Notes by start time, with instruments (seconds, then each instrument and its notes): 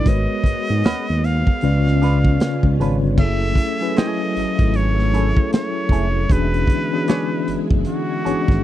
Already playing: string machine B3
0.06 analog synth bass G#1, tine electric piano G#3 F#4 A#4 B4 C#5, string machine G#3 F#4, muted trumpet D#5, kick, closed hi-hat
0.44 analog synth bass G#2, kick, closed hi-hat
0.70 analog synth bass G#2
0.84 analog synth bass D#2, hollow-body jazz guitar C#4 F#4 B4, snare, closed hi-hat
1.09 analog synth bass D#2
1.24 muted trumpet F5, closed hi-hat
1.47 kick
1.61 analog synth bass C#2, string machine C#3 C#4 F4, tine electric piano C#3 C#4 F4 B4 D5, closed hi-hat
1.87 snare
2.02 tine electric piano C#3 C#4 F4 B4 D5, hollow-body jazz guitar D4 F4 B4, closed hi-hat
2.25 kick
2.40 snare, closed hi-hat
2.63 analog synth bass C#2, kick
2.79 analog synth bass G#1, tine electric piano C#3 C#4 F4 B4 C#5, hollow-body jazz guitar D4 F4 B4, closed hi-hat
3.03 analog synth bass G1
3.18 analog synth bass F#1, tine electric piano F#3 C#4 E4 G#4 A4, string machine F#3 A3 E4 G#5, muted trumpet E5, kick, crash
3.55 kick, closed hi-hat
3.80 tine electric piano F#3 C#4 E4 G#4 B4
3.96 hollow-body jazz guitar A3 E4 G#4, muted trumpet D#5, snare, closed hi-hat
4.36 analog synth bass G#1, closed hi-hat
4.59 analog synth bass G#1, kick, closed hi-hat
4.74 muted trumpet C#5, closed hi-hat
4.99 snare
5.13 tine electric piano F#3 C#4 E4 G#4 A4, hollow-body jazz guitar A3 E4 G#4, closed hi-hat
5.37 kick
5.53 muted trumpet C#5, snare, closed hi-hat
5.89 analog synth bass F1, hollow-body jazz guitar A3 E4 G#4, kick, closed hi-hat
6.29 analog synth bass E1, string machine D3 G#3, tine electric piano E3 B3 C#4 D4 F#4 G#4, muted trumpet B4, kick, closed hi-hat
6.54 closed hi-hat
6.67 kick, closed hi-hat
6.92 tine electric piano E3 B3 C#4 D4 F#4 G#4
7.08 hollow-body jazz guitar D4 G#4 C#5, snare, closed hi-hat
7.48 analog synth bass F#1, closed hi-hat
7.71 analog synth bass F#1, kick
7.85 muted trumpet F#4, closed hi-hat
8.25 analog synth bass G#1, tine electric piano E3 B3 C#4 D4 F#4 G#4, hollow-body jazz guitar D4 G#4 C#5, closed hi-hat
8.48 analog synth bass G#1, kick, snare